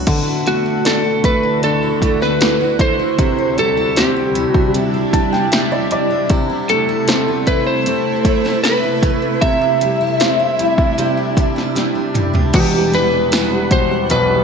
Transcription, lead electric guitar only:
0.47 0.87 F#4 medium
0.87 1.22 A4 medium
1.25 1.61 B4 medium
1.64 2.22 A4 medium
2.22 2.76 B4 medium
2.81 3.59 C5 medium
3.59 3.99 A4 medium
3.98 4.49 G4 medium
4.49 4.71 F#4 medium
6.70 7.43 A4 medium
7.47 7.66 B4 medium
7.67 8.63 C5 medium
8.64 9.44 B4 medium
9.41 11.72 E5 loud
12.56 12.95 G4 medium
12.94 13.72 B4 medium
13.72 14.08 C5 loud
14.11 14.44 B4 loud

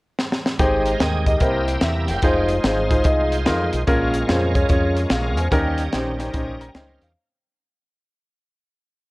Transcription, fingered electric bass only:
0.59 0.94 G#1 medium
1.00 1.35 D#2 medium
1.41 1.76 C2 medium
1.82 2.10 E2 medium
2.09 2.21 F#1 medium
2.23 2.58 F1 medium
2.64 2.99 G#1 medium
3.04 3.48 C2 medium
3.47 3.69 F2 medium
3.74 3.86 B1 medium
3.88 4.23 A#1 loud
4.29 4.64 F2 medium
4.70 5.05 F2 medium
5.10 5.37 A#1 medium
5.37 5.50 E2 medium
5.52 5.87 D#2 medium
5.94 6.28 A#1 medium
6.34 6.69 A#1 medium
6.75 6.97 C#2 medium
7.02 7.14 E2 medium

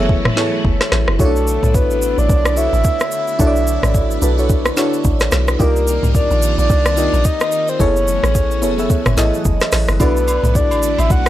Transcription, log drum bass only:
0.00 0.31 F#1 loud
0.65 0.79 F#1 loud
0.92 1.06 A1 medium
1.08 1.18 F#1 medium
1.19 1.58 B1 loud
1.63 1.92 B1 loud
1.91 2.15 A1 medium
2.18 2.28 A1 loud
2.29 2.68 B1 loud
2.73 2.83 A1 medium
3.40 3.78 B1 loud
3.83 4.18 A1 medium
4.22 4.71 B1 loud
5.05 5.29 A1 loud
5.32 5.57 B1 medium
5.60 5.99 C2 loud
6.03 6.28 C2 medium
6.31 6.55 A#1 loud
6.58 6.69 A#1 medium
6.70 7.09 C2 loud
7.13 7.24 A#1 medium
7.80 8.19 F#1 loud
8.23 8.64 A1 loud
8.63 8.87 F#1 loud
9.06 9.16 F#1 medium
9.17 9.32 A1 medium
9.45 9.59 F#1 loud
9.73 9.87 A1 medium
9.88 9.99 F#1 loud
10.00 10.39 B1 loud
10.43 10.73 B1 loud
10.71 10.96 A1 medium
10.99 11.09 A1 medium
11.10 11.29 B1 loud

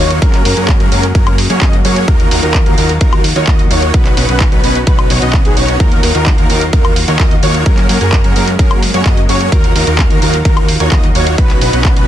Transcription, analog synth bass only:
0.00 0.20 D#2 loud
0.22 0.43 F#2 loud
0.45 0.55 F#2 medium
0.57 0.78 F#2 loud
0.80 0.89 F#2 loud
0.92 1.13 F#2 medium
1.15 1.48 F#2 medium
1.50 1.59 F#2 loud
1.62 1.82 F#2 medium
1.85 2.06 F#2 loud
2.08 2.29 D#2 loud
2.31 2.41 D#2 medium
2.43 2.64 D#2 loud
2.66 2.76 D#2 loud
2.78 2.99 D#2 loud
3.01 3.34 D#2 loud
3.36 3.45 D#2 loud
3.48 3.69 D#2 loud
3.71 3.92 D#2 loud
3.94 4.15 B1 medium
4.17 4.27 B1 loud
4.29 4.50 B1 loud
4.52 4.62 B1 loud
4.64 4.85 B1 loud
4.87 5.08 B1 loud
5.10 5.20 B1 loud
5.22 5.43 B1 loud
5.45 5.55 B1 loud
5.57 5.78 B1 medium
5.80 6.01 D#2 medium
6.03 6.13 D#2 medium
6.15 6.36 D#2 loud
6.38 6.48 D#2 loud
6.50 6.71 D#2 loud
6.73 7.06 D#2 medium
7.08 7.17 D#2 loud
7.20 7.41 D#2 loud
7.43 7.64 D#2 loud
7.66 7.87 F#2 loud
7.89 7.99 F#2 loud
8.01 8.22 F#2 loud
8.24 8.34 F#2 loud
8.36 8.57 F#2 loud
8.59 8.92 F#2 loud
8.94 9.03 F#2 loud
9.06 9.27 F#2 loud
9.29 9.50 F#2 loud
9.52 9.73 D#2 loud
9.76 9.85 D#2 loud
9.87 10.08 D#2 loud
10.10 10.20 D#2 loud
10.22 10.43 D#2 loud
10.45 10.78 D#2 medium
10.80 10.90 D#2 loud
10.92 11.13 D#2 loud
11.15 11.36 D#2 loud
11.38 11.59 B1 loud
11.62 11.71 B1 loud
11.73 11.94 B1 loud
11.97 12.06 B1 loud

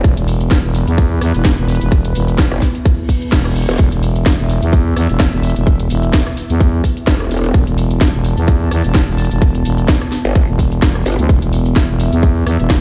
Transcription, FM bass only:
0.04 0.15 E1 loud
0.17 0.62 E1 loud
0.64 0.85 E1 loud
0.88 1.20 E2 loud
1.21 1.32 E2 loud
1.34 1.56 E1 loud
1.58 1.79 E1 loud
1.81 2.14 E1 loud
2.15 2.50 E1 loud
3.32 3.67 E1 loud
3.79 3.90 E1 loud
3.92 4.37 E1 loud
4.39 4.60 E1 loud
4.62 4.95 E2 loud
4.96 5.07 E2 loud
5.09 5.31 E1 loud
5.33 5.54 E1 loud
5.56 5.89 E1 loud
5.90 6.25 E1 loud
6.50 6.82 E2 loud
7.54 7.65 E1 loud
7.67 8.12 E1 loud
8.14 8.35 E1 loud
8.37 8.70 E2 loud
8.71 8.82 E2 loud
8.84 9.06 E1 loud
9.08 9.29 E1 loud
9.31 9.63 E1 loud
9.65 10.00 E1 loud
10.48 10.81 E1 loud
10.82 11.04 E1 loud
11.19 11.28 D2 loud
11.29 11.40 E1 loud
11.42 11.87 E1 loud
11.89 12.10 E1 loud
12.12 12.45 E2 loud
12.46 12.57 E2 loud
12.59 12.81 E1 loud

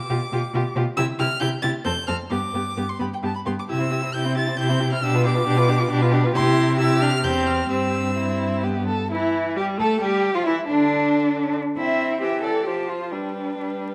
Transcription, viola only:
0.10 0.18 F4 medium
0.33 0.41 F4 medium
0.54 0.62 F4 medium
0.77 0.85 F4 medium
0.97 1.05 E4 medium
1.19 1.27 E4 medium
1.41 1.49 E4 medium
1.63 1.71 E4 medium
1.85 1.93 C4 medium
2.08 2.16 C4 medium
2.31 2.39 B3 medium
2.54 2.62 B3 medium
2.77 2.85 B3 medium
2.99 3.07 B3 medium
3.23 3.31 B3 medium
3.46 3.54 B3 medium
3.69 3.82 E4 medium
3.80 3.93 C4 medium
3.92 4.05 E4 medium
4.03 4.14 C4 medium
4.15 4.27 E4 medium
4.25 4.38 C4 medium
4.36 4.50 E4 medium
4.48 4.58 C4 medium
4.59 4.71 E4 medium
4.70 4.81 C4 medium
4.80 4.93 E4 medium
4.91 5.02 C4 medium
5.02 5.15 D4 medium
5.14 5.27 F4 medium
5.25 5.38 D4 medium
5.36 5.46 F4 medium
5.47 5.59 D4 medium
5.57 5.70 F4 medium
5.68 5.81 D4 medium
5.79 5.90 F4 medium
5.90 6.04 D4 medium
6.02 6.15 F4 medium
6.13 6.27 D4 medium
6.25 6.35 F4 medium
6.35 6.76 E4 loud
6.79 7.01 E4 medium
7.02 7.10 D4 medium
7.24 7.69 C4 medium
7.70 8.65 C4 medium
8.63 8.90 B3 medium
9.11 9.58 E3 medium
9.56 9.79 G3 medium
9.78 10.01 A3 medium
10.01 10.34 G3 medium
10.35 10.46 F3 medium
10.47 10.55 E3 medium
10.69 11.55 D3 medium
11.78 12.23 C4 medium
12.21 12.65 E3 medium
12.66 13.14 F3 medium
13.12 13.53 G3 soft
13.59 13.95 G3 soft

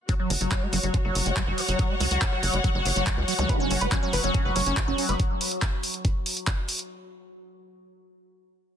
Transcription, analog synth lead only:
3.49 3.56 B4 loud
3.60 3.67 C#4 medium
3.71 3.77 C#4 medium
3.81 3.88 B4 medium
3.92 3.99 C#4 medium
4.03 4.09 C#4 medium
4.13 4.20 B4 loud
4.24 4.31 C#4 medium
4.34 4.41 C#4 medium
4.45 4.52 B4 loud
4.56 4.63 C#4 medium
4.66 4.73 C#4 medium
4.88 4.94 C#4 medium
4.98 5.05 C#4 medium
5.09 5.16 B4 medium

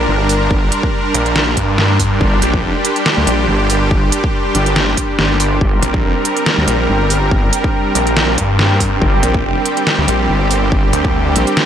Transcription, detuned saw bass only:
1.14 1.55 A#1 loud
1.57 2.19 G2 loud
2.42 2.62 A#1 loud
2.63 2.73 F1 medium
3.27 3.47 A#1 medium
5.83 6.02 A#1 loud
6.04 6.13 F1 medium
6.68 6.87 A#1 loud
7.95 8.36 A#1 loud
8.38 9.00 G2 loud
9.23 9.43 A#1 loud
9.44 9.54 F1 medium
10.08 10.28 A#1 loud
10.93 11.34 D2 loud

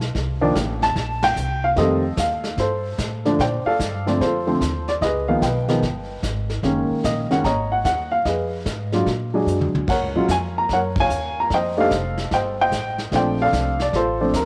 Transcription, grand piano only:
0.41 0.54 D#3 medium
0.41 0.54 F3 medium
0.41 0.54 A#3 medium
0.41 0.54 D4 medium
0.83 1.24 A5 loud
1.24 1.65 G5 loud
1.64 1.69 F5 medium
1.77 2.01 D#3 medium
1.77 2.01 G3 soft
1.77 2.02 A3 soft
1.77 2.02 C4 medium
1.77 2.55 A4 medium
1.77 2.19 D#5 medium
2.19 2.56 F5 medium
2.60 3.36 A4 soft
2.60 3.22 C5 medium
3.25 3.38 D3 medium
3.25 3.38 F3 medium
3.25 3.38 A3 medium
3.25 3.38 D4 medium
3.41 4.17 C5 medium
3.41 3.66 D5 medium
3.41 3.47 G5 medium
3.66 4.21 A4 medium
3.66 4.07 D5 medium
3.66 4.04 F5 medium
4.07 4.19 D3 medium
4.07 4.19 F3 soft
4.07 4.19 A3 soft
4.07 4.19 C4 medium
4.07 4.22 D5 medium
4.21 4.99 F4 soft
4.21 4.99 A4 soft
4.21 4.90 C5 medium
4.47 4.60 D3 medium
4.47 4.59 F3 medium
4.47 4.59 A3 soft
4.47 4.60 C4 medium
4.89 4.94 D5 medium
5.02 5.80 G#4 soft
5.02 5.43 B4 medium
5.02 5.27 D#5 medium
5.28 5.41 D#3 medium
5.28 5.41 F3 medium
5.28 5.41 G#3 medium
5.28 5.41 B3 medium
5.28 5.42 F5 medium
5.42 6.20 B4 soft
5.42 6.20 D#5 soft
5.42 6.19 G5 medium
5.69 5.81 D#3 medium
5.69 5.82 F3 medium
5.69 5.82 G#3 medium
5.69 5.82 B3 medium
6.64 7.26 D#3 medium
6.64 7.26 G#3 soft
6.64 7.26 A#3 medium
6.64 7.26 C#4 medium
7.05 7.32 D#5 medium
7.31 7.43 D#3 medium
7.31 7.43 G#3 medium
7.31 7.43 A#3 medium
7.31 7.43 C#4 medium
7.31 7.44 F#5 medium
7.45 8.22 C#5 medium
7.45 8.23 D#5 medium
7.45 7.72 A#5 medium
7.72 7.84 F#5 medium
7.85 8.13 F#5 medium
8.12 8.26 F5 medium
8.26 9.04 G#4 soft
8.26 9.04 B4 soft
8.26 9.03 D#5 medium
8.93 9.06 F#3 medium
8.93 9.06 G#3 soft
8.93 9.06 D4 soft
8.93 9.06 F4 medium
9.34 9.85 F#3 medium
9.34 9.86 G#3 medium
9.34 9.86 D4 medium
9.34 9.86 G#4 medium
9.89 10.66 A#4 medium
9.89 10.66 C#5 medium
9.89 10.30 F#5 medium
10.16 10.28 F#3 medium
10.16 10.28 G#3 medium
10.16 10.28 C#4 medium
10.16 10.28 F4 medium
10.31 10.37 G#5 medium
10.58 10.71 A#5 medium
10.73 11.48 A#4 medium
10.73 10.99 C#5 medium
10.73 10.79 F#5 medium
11.00 11.49 C#5 medium
11.00 11.49 F5 medium
11.00 11.40 G#5 loud
11.40 11.51 A#5 medium
11.54 11.79 C5 medium
11.54 12.29 D#5 medium
11.54 11.60 G5 medium
11.77 11.90 G3 medium
11.77 11.90 A3 medium
11.77 11.90 D4 medium
11.77 11.90 D#4 medium
11.77 12.56 A4 medium
11.77 12.33 C5 medium
11.77 12.17 F5 medium
12.34 12.60 C5 medium
12.34 12.60 D#5 medium
12.34 12.40 G5 medium
12.61 13.10 C5 medium
12.61 13.10 D#5 medium
12.61 12.98 G5 loud
13.13 13.74 F3 medium
13.13 13.75 A3 medium
13.13 13.75 C4 soft
13.13 13.75 D4 medium
13.13 13.91 C5 medium
13.13 13.40 D5 medium
13.13 13.41 G5 medium
13.42 13.94 A4 medium
13.42 13.80 D5 medium
13.42 13.78 F5 medium
13.82 13.95 D5 medium
13.96 14.45 F4 medium
13.96 14.45 A4 medium
13.96 14.37 C5 medium
14.21 14.33 F3 medium
14.21 14.33 A3 soft
14.21 14.33 C4 soft
14.21 14.33 D4 medium
14.36 14.45 A#4 medium

